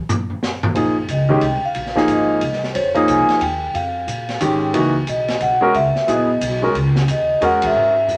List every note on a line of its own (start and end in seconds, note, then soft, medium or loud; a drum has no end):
0.09 floor tom loud
0.09 hi-hat pedal medium
0.30 floor tom soft
0.43 snare medium
0.63 floor tom loud
0.75 1.08 A#1 medium
0.75 0.94 F3 medium
0.75 0.94 A#3 soft
0.75 0.95 D#4 soft
0.75 0.95 G#4 medium
0.75 ride medium
1.08 1.41 C#2 medium
1.08 1.44 D#5 medium
1.08 hi-hat pedal soft
1.08 ride medium
1.29 1.40 D#3 medium
1.29 1.41 G#3 medium
1.29 1.41 C#4 medium
1.29 1.41 G4 medium
1.41 1.61 C2 medium
1.41 1.65 G5 medium
1.41 ride medium
1.63 2.11 F5 medium
1.63 muted upright bass stroke soft
1.75 2.08 A#1 medium
1.75 ride medium
1.86 snare soft
1.95 2.39 F3 medium
1.95 2.39 A#3 medium
1.95 2.39 D#4 medium
1.95 2.40 G#4 medium
1.95 snare soft
2.08 2.41 G#1 medium
2.08 2.59 D#5 medium
2.08 hi-hat pedal soft
2.08 ride medium
2.41 2.74 C2 medium
2.41 ride medium
2.53 snare soft
2.64 snare soft
2.72 3.07 F2 medium
2.72 2.76 C5 medium
2.72 3.09 C#5 medium
2.72 ride medium
2.94 3.38 F3 medium
2.94 3.39 A#3 medium
2.94 3.39 D#4 medium
2.94 3.39 G#4 medium
2.94 ride soft
3.07 3.27 C2 medium
3.07 3.42 G#5 loud
3.07 hi-hat pedal soft
3.07 ride medium
3.29 muted upright bass stroke soft
3.29 snare soft
3.29 ride soft
3.41 3.73 D#2 loud
3.41 3.76 G5 loud
3.41 ride medium
3.74 4.07 F2 medium
3.74 4.37 F5 medium
3.74 ride medium
4.07 4.40 A#2 medium
4.07 hi-hat pedal soft
4.07 ride medium
4.29 snare soft
4.29 ride soft
4.41 4.73 G#2 medium
4.41 4.74 D#3 medium
4.41 4.75 G#3 soft
4.41 4.75 C#4 soft
4.41 4.75 G4 medium
4.41 hi-hat pedal medium
4.41 ride medium
4.73 5.07 C#2 medium
4.73 4.93 E3 medium
4.73 4.93 A#3 soft
4.73 4.93 D#4 soft
4.73 4.94 F#4 medium
4.73 ride medium
5.07 5.40 B1 medium
5.07 5.43 D#5 medium
5.07 hi-hat pedal medium
5.07 ride medium
5.28 snare medium
5.28 ride soft
5.40 5.74 B1 medium
5.40 5.76 F#5 loud
5.40 ride soft
5.61 5.73 G#3 medium
5.61 5.73 C#4 medium
5.61 5.73 F#4 medium
5.61 5.74 A#4 medium
5.74 5.94 C#2 medium
5.74 6.06 E5 medium
5.74 ride medium
5.96 muted upright bass stroke soft
5.96 snare soft
6.07 6.40 A#1 medium
6.07 6.27 F#3 medium
6.07 6.27 B3 medium
6.07 6.27 E4 medium
6.07 6.28 G#4 medium
6.07 6.60 D#5 medium
6.07 hi-hat pedal soft
6.07 ride medium
6.41 6.74 B1 medium
6.41 hi-hat pedal medium
6.41 ride medium
6.62 6.74 G#3 medium
6.62 6.74 C#4 medium
6.62 6.74 F#4 medium
6.62 6.75 A#4 medium
6.75 7.07 C#2 medium
6.75 ride medium
6.96 snare medium
7.07 7.40 D#2 medium
7.07 7.41 D#5 medium
7.07 hi-hat pedal soft
7.07 ride medium
7.41 7.74 E2 medium
7.41 7.92 G#3 medium
7.41 7.92 C#4 medium
7.41 7.92 F#4 medium
7.41 7.93 A#4 medium
7.41 7.63 F#5 loud
7.41 ride medium
7.62 kick medium
7.62 ride medium
7.66 8.17 E5 medium
7.74 8.07 G#2 medium
8.08 8.17 F#2 medium
8.08 hi-hat pedal medium